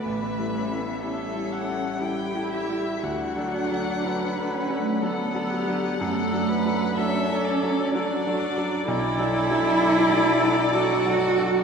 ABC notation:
X:1
M:3/4
L:1/16
Q:1/4=62
K:D
V:1 name="Violin"
e4 e2 f2 g2 e2 | f8 f4- | f4 e2 d2 d4 | d12 |]
V:2 name="Viola"
B4 A4 G4 | F4 B4 A2 G2 | A2 B2 A4 F4 | A12 |]
V:3 name="Grand piano"
(3A,,,2 [G,EA]2 [G,EA]2 (3[G,EA]2 [G,EA]2 [G,EA]2 (3[G,EA]2 [G,EA]2 [G,EA]2 | (3D,,2 [F,DA]2 [F,DA]2 (3[F,DA]2 [F,DA]2 [F,DA]2 (3[F,DA]2 [F,DA]2 [F,DA]2 | (3F,,2 [F,DA]2 [F,DA]2 (3[F,DA]2 [F,DA]2 [F,DA]2 (3[F,DA]2 [F,DA]2 [F,DA]2 | (3B,,,2 [F,DA]2 [F,DA]2 (3[F,DA]2 [F,DA]2 [F,DA]2 (3[F,DA]2 [F,DA]2 [F,DA]2 |]
V:4 name="Cello"
A,2 C B, C4 E4 | D6 C A, B,4 | A,4 C4 D4 | E8 F4 |]